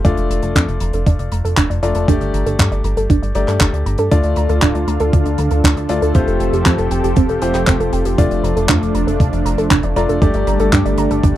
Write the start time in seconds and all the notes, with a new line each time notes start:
0.05 F1 A3 D4 F4 D5, kick, closed hi-hat
0.17 F1 D5, closed hi-hat
0.30 F1 A#5, closed hi-hat
0.43 F1 A4, closed hi-hat
0.55 F2 D4, kick, clap, closed hi-hat
0.68 F1 D5, closed hi-hat
0.80 F1 A#5, closed hi-hat
0.93 F1 A4, closed hi-hat
1.06 F1 D4, kick, closed hi-hat
1.19 F1 D5, closed hi-hat
1.32 F1 A#5, closed hi-hat
1.45 F1 A4, closed hi-hat
1.57 F1 D4, kick, clap, closed hi-hat
1.70 F1 D5, closed hi-hat
1.83 F1 A3 D4 F4 D5 A#5, closed hi-hat
1.95 F1 A4, closed hi-hat
2.08 G1 A3 D4 G4 D5, kick, closed hi-hat
2.21 G1 D5, closed hi-hat
2.33 G1 A#5, closed hi-hat
2.46 G1 A4, closed hi-hat
2.59 G2 D4, kick, clap, closed hi-hat
2.72 G1 D5, closed hi-hat
2.84 G1 A#5, closed hi-hat
2.97 G1 A4, closed hi-hat
3.10 G1 D4, kick, closed hi-hat
3.23 G1 D5, closed hi-hat
3.35 G1 A3 D4 G4 D5 A#5, closed hi-hat
3.48 G2 A4, clap, closed hi-hat
3.60 G1 D4, kick, clap, closed hi-hat
3.73 D2 D5, closed hi-hat
3.86 G1 A#5, closed hi-hat
3.98 G2 A4, closed hi-hat
4.11 D2 D3 A3 D4 F4 A4 D5, kick, closed hi-hat
4.23 D2 D5, closed hi-hat
4.36 D2 A#5, closed hi-hat
4.49 D2 A4, closed hi-hat
4.62 D1 D4, kick, clap, closed hi-hat
4.75 D2 D5, closed hi-hat
4.87 D2 A#5, closed hi-hat
5.00 D2 A4, closed hi-hat
5.13 D2 D4, kick, closed hi-hat
5.26 D2 D5, closed hi-hat
5.38 D2 A#5, closed hi-hat
5.51 D2 A4, closed hi-hat
5.64 D2 D4, kick, clap, closed hi-hat
5.76 D2 D5, closed hi-hat
5.89 D2 A3 D4 F4 D5 A#5, closed hi-hat
6.02 D2 A4, closed hi-hat
6.15 F1 F3 A3 C4 F4 G4 C5, kick, closed hi-hat
6.27 F1 A4, closed hi-hat
6.40 F1 G5, closed hi-hat
6.53 F1 G4, closed hi-hat
6.66 F2 C4, kick, clap, closed hi-hat
6.78 F1 A4, closed hi-hat
6.91 F1 G5, closed hi-hat
7.04 F1 G4, closed hi-hat
7.16 F1 C4, kick, closed hi-hat
7.29 F1 A4, closed hi-hat
7.42 F1 A3 F4 G4 C5 G5, closed hi-hat
7.54 F1 G4, clap, closed hi-hat
7.67 F1 C4, kick, clap, closed hi-hat
7.80 F1 A4, closed hi-hat
7.93 F1 G5, closed hi-hat
8.05 F1 G4, closed hi-hat
8.18 F1 A3 D4 F4 D5, kick, closed hi-hat
8.31 F1 D5, closed hi-hat
8.43 F1 A#5, closed hi-hat
8.56 F1 A4, closed hi-hat
8.69 F2 D4, kick, clap, closed hi-hat
8.82 F1 D5, closed hi-hat
8.95 F1 A#5, closed hi-hat
9.07 F1 A4, closed hi-hat
9.20 F1 D4, kick, closed hi-hat
9.33 F1 D5, closed hi-hat
9.45 F1 A#5, closed hi-hat
9.58 F1 A4, closed hi-hat
9.71 F1 D4, kick, clap, closed hi-hat
9.83 F1 D5, closed hi-hat
9.96 F1 A3 D4 F4 D5 A#5, closed hi-hat
10.09 F1 A4, closed hi-hat
10.22 G1 G3 A3 D4 G4 D5, kick, closed hi-hat
10.34 G1 D5, closed hi-hat
10.47 G1 A#5, closed hi-hat
10.60 G1 A4, closed hi-hat
10.72 G2 D4, kick, clap, closed hi-hat
10.85 G1 D5, closed hi-hat
10.98 G1 A#5, closed hi-hat
11.11 G1 A4, closed hi-hat
11.23 G1 D4, kick, closed hi-hat